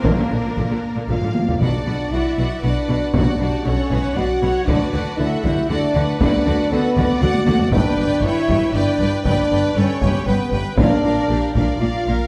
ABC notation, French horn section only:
X:1
M:3/4
L:1/8
Q:1/4=117
K:Bm
V:1 name="French horn section"
^A,4 ^E2 | D2 E2 D2 | D2 C2 F2 | D2 E2 D2 |
D2 B,2 F2 | D2 E2 D2 | D2 C2 B, z | D3 D ^E2 |]